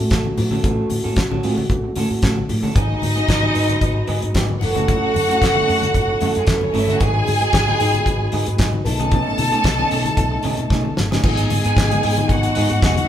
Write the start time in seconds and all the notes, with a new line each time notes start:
Already playing: A3 C#4 F#4
0.10 A1 A3 C#4 F#4 A4, kick, snare, clap, closed hi-hat
0.24 muted clean electric guitar stroke, high conga
0.38 A2, muted clean electric guitar stroke, open hi-hat, muted conga, low conga
0.51 A3 C#4 F#4 A4, high conga
0.64 A1 A3 C#4 F#4 A4, kick, closed hi-hat, muted conga, low conga
0.90 A2, muted clean electric guitar stroke, open hi-hat, high conga
1.04 A2 A3 C#4 F#4 A4
1.16 A1, muted clean electric guitar stroke, kick, snare, clap, closed hi-hat, muted conga
1.31 A1 A3 C#4 F#4 A4, high conga
1.43 A2 A3 C#4 F#4 A4, open hi-hat
1.57 muted clean electric guitar stroke, high conga
1.70 A1, kick, closed hi-hat, low conga
1.84 muted clean electric guitar stroke
1.96 A2 A3 C#4 F#4 A4, open hi-hat, muted conga, high conga
2.10 A2, muted clean electric guitar stroke
2.22 A1 A3 C#4 F#4 A4, kick, snare, clap, closed hi-hat
2.37 muted clean electric guitar stroke, high conga
2.49 A2, muted clean electric guitar stroke, open hi-hat, low conga
2.63 A3 C#4 F#4 A4, high conga
2.74 G#1 F#3 G#3 B3 D#4 F#4 G#4 B4 D#5, kick, closed hi-hat, muted conga, low conga
3.02 G#2, muted clean electric guitar stroke, open hi-hat, muted conga, high conga
3.16 F#3 B3 D#4 G#4, closed hi-hat
3.28 G#1, muted clean electric guitar stroke, kick, snare, clap, closed hi-hat, muted conga
3.42 F#3 B3 D#4 G#4, high conga
3.54 G#2 F#3 B3 D#4 G#4, open hi-hat
3.68 muted clean electric guitar stroke, closed hi-hat, high conga
3.81 G#1, kick, closed hi-hat, muted conga, low conga
3.95 muted clean electric guitar stroke
4.07 G#2 F#3 B3 D#4 G#4, open hi-hat, high conga
4.22 G#2, muted clean electric guitar stroke, closed hi-hat
4.34 G#2 F#3 B3 D#4 G#4, kick, snare, clap, closed hi-hat, muted conga
4.49 muted clean electric guitar stroke, high conga
4.61 F#1 F#3 C#4 E4 F#4 A4 F#5, muted clean electric guitar stroke, open hi-hat, muted conga, low conga
4.74 A3 C#4 E4 A4, closed hi-hat, high conga
4.87 A3 C#4 E4 A4, kick, closed hi-hat, muted conga, low conga
5.14 F#2, muted clean electric guitar stroke, open hi-hat, high conga
5.28 A3 C#4 E4 A4, closed hi-hat
5.40 F#1, muted clean electric guitar stroke, kick, snare, closed hi-hat
5.45 clap
5.54 A3 C#4 E4 A4, high conga
5.67 F#2 A3 C#4 E4 A4, open hi-hat, muted conga
5.82 muted clean electric guitar stroke, closed hi-hat, high conga
5.94 F#1, kick, closed hi-hat, low conga
6.09 muted clean electric guitar stroke
6.20 F#2 A3 C#4 E4 A4, open hi-hat, muted conga, high conga
6.35 F#2 G#3 G#4, muted clean electric guitar stroke, closed hi-hat
6.47 F#2 A3 A4, muted clean electric guitar stroke, kick, snare, clap, closed hi-hat, muted conga
6.56 B3 B4
6.61 C#4 C#5, muted clean electric guitar stroke, high conga
6.74 G1 A3 C#4 D#4 E4 A4 D#5, open hi-hat, muted conga, low conga
6.82 E4 E5
6.88 A3 C#4 E4 F#4 A4 F#5, closed hi-hat, high conga
6.99 G#1 F#3 G#3 B3 D#4 F#4 G#4 B4 G#5, kick, closed hi-hat, muted conga, low conga
7.27 G#2, muted clean electric guitar stroke, open hi-hat, high conga
7.40 F#3 B3 D#4 G#4, closed hi-hat
7.53 G#1, muted clean electric guitar stroke, kick, snare, clap, closed hi-hat
7.67 F#3 B3 D#4 G#4, high conga
7.80 G#2 F#3 B3 D#4 G#4, open hi-hat, muted conga
7.93 muted clean electric guitar stroke, closed hi-hat, high conga
8.06 G#1, kick, closed hi-hat, low conga
8.20 muted clean electric guitar stroke
8.32 G#2 F#3 B3 D#4 G#4, open hi-hat, high conga
8.46 G#2, muted clean electric guitar stroke, closed hi-hat
8.58 G#2 F#3 B3 D#4 G#4, kick, snare, clap, closed hi-hat, muted conga
8.73 muted clean electric guitar stroke, high conga
8.85 B1 A3 B3 D#4 A4 A5, muted clean electric guitar stroke, open hi-hat, muted conga, low conga
8.99 A3 C#4 D#4 G#4, closed hi-hat, high conga
9.11 A3 C#4 D#4 G#4, kick, closed hi-hat, muted conga, low conga
9.38 B2, muted clean electric guitar stroke, open hi-hat, high conga
9.52 A3 C#4 D#4 G#4, closed hi-hat
9.64 B1, muted clean electric guitar stroke, kick, snare, clap, closed hi-hat
9.78 A3 C#4 D#4 G#4, high conga
9.90 B2 A3 C#4 D#4 G#4, open hi-hat
10.04 muted clean electric guitar stroke, closed hi-hat, high conga
10.17 B1, kick, closed hi-hat, muted conga, low conga
10.31 muted clean electric guitar stroke
10.43 B2 A3 C#4 D#4 G#4, open hi-hat, high conga
10.57 B2, muted clean electric guitar stroke, closed hi-hat
10.70 B2 A3 C#4 D#4 G#4, kick, snare, muted conga
10.84 muted clean electric guitar stroke, high conga
10.97 G1, muted clean electric guitar stroke, snare, low conga
11.11 A3 C#4 D#4 G#4, snare, high conga
11.23 G#1 G#3 B3 D#4 G#4 G#5, kick, crash, muted conga, low conga
11.37 closed hi-hat
11.50 G#2, muted clean electric guitar stroke, open hi-hat, high conga
11.64 G#2 G#3 B3 D#4 G#4, closed hi-hat
11.77 G#1, muted clean electric guitar stroke, kick, snare, clap, muted conga
11.90 G#3 B3 D#4 G#4, closed hi-hat, high conga
12.03 G#2 G#3 B3 D#4 G#4, open hi-hat, muted conga
12.17 muted clean electric guitar stroke, closed hi-hat, high conga
12.29 G#1 F#4 F#5, kick, closed hi-hat, low conga
12.43 muted clean electric guitar stroke, closed hi-hat
12.55 G#2 G#3 B3 D#4 G#4, open hi-hat
12.70 G#2, muted clean electric guitar stroke, closed hi-hat
12.82 F1 G#3 B3 D#4 G#4, kick, snare, clap, muted conga
12.96 muted clean electric guitar stroke, closed hi-hat, high conga